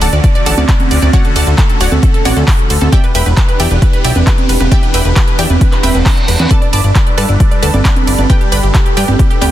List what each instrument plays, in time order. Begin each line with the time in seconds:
Already playing: supersaw synth D3 A3 C#4 F#4
0.01 analog synth bass D1, synth pluck A4 D5 F#5 A5, grand piano A5, open hi-hat, ride, shaker
0.13 analog synth bass D2, grand piano D5, synth pluck D5, closed hi-hat, shaker
0.24 grand piano D5, synth pluck D5, kick, closed hi-hat, shaker
0.35 grand piano D5, synth pluck D5, closed hi-hat, shaker
0.46 analog synth bass A1, synth pluck A4 D5 F#5 A5, grand piano A5, open hi-hat, ride, shaker
0.57 analog synth bass D2, grand piano D5, synth pluck D5, closed hi-hat, high conga, shaker
0.69 synth pluck D5, kick, clap, closed hi-hat, shaker
0.80 closed hi-hat, high conga, shaker
0.91 analog synth bass D2, grand piano D5, synth pluck D5, open hi-hat, ride, shaker
1.02 analog synth bass D2, grand piano D5, synth pluck D5, closed hi-hat, high conga, shaker
1.13 synth pluck F#4 C#5 D5 F#5, grand piano F#5, kick, closed hi-hat, shaker
1.24 grand piano A4, synth pluck A4, closed hi-hat, shaker
1.36 analog synth bass D2, synth pluck A4 D5 F#5 A5, grand piano A5, open hi-hat, ride, shaker
1.47 analog synth bass D2, grand piano A4, synth pluck A4, closed hi-hat, shaker
1.58 synth pluck A4, kick, clap, closed hi-hat, shaker
1.69 grand piano A4, synth pluck A4, closed hi-hat, shaker
1.81 analog synth bass D1, synth pluck F#4 C#5 D5 F#5, grand piano F#5, open hi-hat, ride, shaker
1.92 analog synth bass D2, grand piano A4, synth pluck A4, high conga, shaker
2.03 synth pluck A4, grand piano A4, kick, closed hi-hat, shaker
2.14 synth pluck A4, grand piano A4, closed hi-hat, shaker
2.25 analog synth bass A1, synth pluck F#4 C#5 D5 F#5, grand piano F#5, open hi-hat, ride, high conga, shaker
2.36 analog synth bass D2, grand piano A4, synth pluck A4, closed hi-hat, shaker
2.48 synth pluck A4, kick, clap, open hi-hat, shaker
2.59 closed hi-hat, shaker
2.70 analog synth bass D2, synth pluck A4, grand piano A4, open hi-hat, ride, shaker
2.81 analog synth bass D2, synth pluck A4, grand piano A4, closed hi-hat, high conga, shaker
2.92 supersaw synth E3 B3 D4 G4, synth pluck G4 D5 E5 G5, grand piano G5, kick, closed hi-hat, shaker
3.04 synth pluck B4, grand piano B4, closed hi-hat, shaker
3.15 analog synth bass E1, synth pluck B4 E5 G5 B5, grand piano B5, open hi-hat, ride, shaker
3.26 analog synth bass E1, synth pluck B4, grand piano B4, closed hi-hat, shaker
3.37 synth pluck B4, grand piano B4, kick, clap, closed hi-hat, shaker
3.49 synth pluck B4, grand piano B4, closed hi-hat, shaker
3.60 analog synth bass E2, synth pluck G4 D5 E5 G5, grand piano G5, open hi-hat, ride, shaker
3.71 analog synth bass E1, grand piano B4, synth pluck B4, closed hi-hat, shaker
3.82 synth pluck B4, grand piano B4, kick, closed hi-hat, shaker
3.93 grand piano B4, synth pluck B4, closed hi-hat, shaker
4.04 analog synth bass B1, synth pluck G4 D5 E5 G5, grand piano G5, open hi-hat, ride, shaker
4.16 analog synth bass E1, grand piano B4, synth pluck B4, closed hi-hat, high conga, shaker
4.27 grand piano B4, synth pluck B4, kick, clap, closed hi-hat, shaker
4.38 closed hi-hat, high conga, shaker
4.49 analog synth bass E1, grand piano B4, synth pluck B4, open hi-hat, ride, shaker
4.60 analog synth bass E1, grand piano B4, synth pluck B4, closed hi-hat, high conga, shaker
4.72 synth pluck G4 D5 E5 G5, grand piano G5, kick, closed hi-hat, shaker
4.83 grand piano B4, synth pluck B4, closed hi-hat, shaker
4.94 analog synth bass E1, synth pluck B4 E5 G5 B5, grand piano B5, open hi-hat, ride, shaker
5.05 analog synth bass E1, grand piano B4, synth pluck B4, closed hi-hat, shaker
5.16 synth pluck B4, grand piano B4, kick, clap, closed hi-hat, shaker
5.28 synth pluck B4, grand piano B4, closed hi-hat, shaker
5.39 analog synth bass E2, synth pluck G4 D5 E5 G5, grand piano G5, open hi-hat, ride, shaker
5.50 analog synth bass E1, synth pluck B4, grand piano B4, closed hi-hat, high conga, shaker
5.61 synth pluck B4, grand piano B4, kick, closed hi-hat, reverse cymbal, shaker
5.72 synth pluck B4, grand piano B4, clap, closed hi-hat, shaker
5.83 analog synth bass E1, synth pluck B4 E5 G5 B5, grand piano B5, open hi-hat, ride, high conga, shaker
5.95 analog synth bass E1, grand piano B4, synth pluck B4, closed hi-hat, high conga, shaker
6.06 synth pluck B4, kick, clap, open hi-hat, shaker
6.17 closed hi-hat, shaker
6.28 analog synth bass E1, grand piano B4, synth pluck B4, open hi-hat, ride, shaker
6.39 analog synth bass E2, synth pluck B4, grand piano B4, closed hi-hat, high conga, shaker
6.50 supersaw synth G3 A4 B4, synth pluck A4 B4 D5 A5, grand piano A5, kick, closed hi-hat, shaker
6.62 synth pluck D5, grand piano D5, closed hi-hat, shaker
6.73 analog synth bass G1, synth pluck D5 A5 B5 D6, grand piano D6, open hi-hat, ride, shaker
6.84 analog synth bass G1, synth pluck D5, grand piano D5, closed hi-hat, shaker
6.95 synth pluck D5, grand piano D5, kick, clap, closed hi-hat, shaker
7.06 synth pluck D5, grand piano D5, closed hi-hat, shaker
7.18 analog synth bass G2, synth pluck A4 B4 D5 A5, grand piano A5, open hi-hat, ride, shaker
7.29 analog synth bass G1, synth pluck D5, grand piano D5, closed hi-hat, shaker
7.40 synth pluck D5, grand piano D5, kick, closed hi-hat, shaker
7.51 synth pluck D5, grand piano D5, closed hi-hat, shaker
7.62 analog synth bass D2, synth pluck A4 B4 D5 A5, grand piano A5, open hi-hat, ride, shaker
7.74 analog synth bass G1, grand piano D5, synth pluck D5, closed hi-hat, high conga, shaker
7.85 synth pluck D5, kick, clap, closed hi-hat, shaker
7.96 closed hi-hat, high conga, shaker
8.07 analog synth bass G1, synth pluck D5, grand piano D5, open hi-hat, ride, shaker
8.18 analog synth bass G1, synth pluck D5, grand piano D5, high conga, shaker
8.30 synth pluck G4 B4 D5 G5, grand piano G5, kick, closed hi-hat, shaker
8.41 synth pluck G4, grand piano G4, closed hi-hat, shaker
8.52 analog synth bass G1, synth pluck B4 D5 G5 B5, grand piano B5, open hi-hat, ride, shaker
8.63 analog synth bass G1, grand piano G4, synth pluck G4, closed hi-hat, shaker
8.75 synth pluck G4, grand piano G4, kick, clap, closed hi-hat, shaker
8.86 synth pluck G4, grand piano G4, closed hi-hat, shaker
8.97 analog synth bass G2, synth pluck G4 B4 D5 G5, grand piano G5, open hi-hat, ride, shaker
9.08 analog synth bass G1, synth pluck G4, grand piano G4, closed hi-hat, high conga, shaker
9.19 synth pluck G4, kick, closed hi-hat, shaker
9.30 synth pluck G4, grand piano G4, closed hi-hat, shaker
9.41 analog synth bass D2, synth pluck G4 B4 D5 G5, grand piano G5, open hi-hat, ride, high conga, shaker